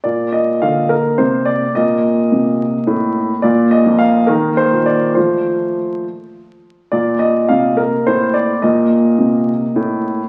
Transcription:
<<
  \new Staff \with { instrumentName = "Grand piano" } { \time 6/8 \key bes \major \tempo 4. = 70 d''8 ees''8 f''8 bes'8 c''8 d''8 | ees''2~ ees''8 r8 | d''8 ees''8 f''8 bes'8 c''8 d''8 | c''4. r4. |
d''8 ees''8 f''8 bes'8 c''8 d''8 | ees''2~ ees''8 r8 | }
  \new Staff \with { instrumentName = "Grand piano" } { \clef bass \time 6/8 \key bes \major << { bes2. | bes2. | bes4. bes4. | r2. |
bes2. | bes2. | } \\ { bes,4 d4 c4 | bes,4 c4 a,4 | bes,8. f,8. ees8. bes,8. | <f a f'>4. r4. |
bes,4 c4 a,4 | bes,4 c4 a,4 | } >> }
>>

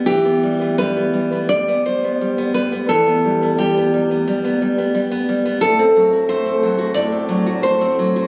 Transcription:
\new Staff \with { instrumentName = "Nylon-string guitar" } { \time 4/4 \key e \minor \tempo 4 = 87 << { g'4 b'4 d''8 c''4 b'8 | a'4 g'2~ g'8 r8 | a'4 c''4 d''4 c''4 | } \\ { e16 b16 g16 b16 g16 b16 g16 b16 g16 b16 g16 b16 g16 b16 g16 b16 | e16 b16 g16 b16 g16 b16 g16 b16 g16 b16 g16 b16 g16 b16 g16 b16 | a,16 c'16 fis16 fis'16 a16 c'16 fis16 fis'16 a,16 c'16 fis16 fis'16 a16 c'16 fis16 fis'16 | } >> }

